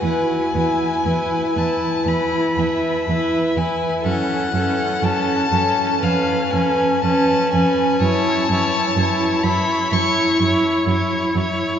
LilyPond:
<<
  \new Staff \with { instrumentName = "Violin" } { \time 4/4 \key fis \dorian \tempo 4 = 62 gis''4. a''8 b''8 e''4 gis''8 | fis''4 a''4 eis''8 gis''8 a''8 gis''8 | a''4. b''8 cis'''8 r4. | }
  \new Staff \with { instrumentName = "Violin" } { \time 4/4 \key fis \dorian b'8 b'8 b'8 b'8 b'8 b'8 b'8 b'8 | a'8 a'8 a'8 a'8 b'8 b'8 b'8 b'8 | cis''8 cis''8 cis''8 cis''8 cis''8 cis''8 cis''8 cis''8 | }
  \new Staff \with { instrumentName = "Viola" } { \time 4/4 \key fis \dorian e'8 e'8 e'8 e'8 e'8 e'8 e'8 e'8 | cis'8 cis'8 cis'8 cis'8 cis'8 cis'8 cis'8 cis'8 | e'8 e'8 e'8 e'8 e'8 e'8 e'8 e'8 | }
  \new Staff \with { instrumentName = "Cello" } { \clef bass \time 4/4 \key fis \dorian e,8 e,8 e,8 e,8 e,8 e,8 e,8 e,8 | fis,8 fis,8 fis,8 fis,8 eis,8 eis,8 eis,8 eis,8 | fis,8 fis,8 fis,8 fis,8 fis,8 fis,8 fis,8 fis,8 | }
>>